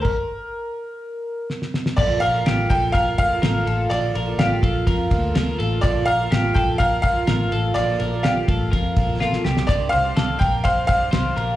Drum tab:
CC |x---------------|x---------------|----------------|----------------|
RD |----------------|--x-x-x-x-x-x-x-|x-x-x-x-x-x-x-x-|x-x-x-x-x-x-x-x-|
HH |----------------|----------------|----------------|----------------|
SD |------------oooo|----o-------o---|----o-------o---|----o-------o---|
BD |o---------------|o-----o-o-o-----|------o-o-o-----|o-----o-o-o-----|

CC |----------------|----------------|
RD |x-x-x-x-x-x-----|x-x-x-x-x-x-x-x-|
HH |----------------|p---------------|
SD |----o-------oooo|----o-------o---|
BD |------o-o-o-----|o-----o-o-o-----|